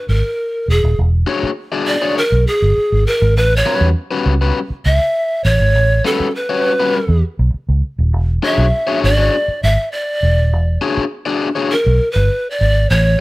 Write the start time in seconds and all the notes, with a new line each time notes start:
Already playing: B4
0.09 G#1 A#4
0.68 E1 G#4
0.84 D#1
0.98 E1
1.27 D4 F#4 G#4 C#5
1.43 muted fingered electric bass stroke
1.72 D4 F#4 G#4 D5
1.87 D5
2.02 D4 F#4 G#4 C#5
2.18 A#4
2.32 B1
2.47 G#4
2.62 G1
2.77 muted fingered electric bass stroke
2.92 G#1
3.07 A#4
3.22 G#1
3.37 A1 B4
3.56 C#5
3.66 G3 C#4 F#4 B4
3.81 E2
4.11 G3 C#4 F#4 B4
4.26 C#2
4.41 G3 C#4 F#4 B4
4.70 muted fingered electric bass stroke
4.86 C#2 E5
5.44 A1 C#5
5.60 G#1
5.75 A1
6.05 G3 C#4 F#4 A4 B4
6.20 muted fingered electric bass stroke
6.35 B4
6.49 G3 C#4 F#4 C#5
6.80 G3 C#4 F#4 B4
7.09 E2
7.39 B1
7.54 muted fingered electric bass stroke
7.69 C#2
7.98 D#1
8.13 E1
8.43 D4 F#4 G#4 C#5 E5
8.58 B1
8.87 D4 F#4 G#4 C#5
9.04 G#1 D5
9.17 D4 F#4 G#4 C#5
9.48 muted fingered electric bass stroke
9.63 G#1 E5
9.92 D5
10.23 E1
10.38 D#1
10.53 E1
10.81 D4 F#4 G#4 C#5
10.97 muted fingered electric bass stroke
11.26 D4 F#4 G#4 D5
11.55 D4 F#4 G#4 C#5
11.72 A#4
11.86 B1
12.12 G1 B4
12.50 D5
12.61 G#1
12.90 A1 C#5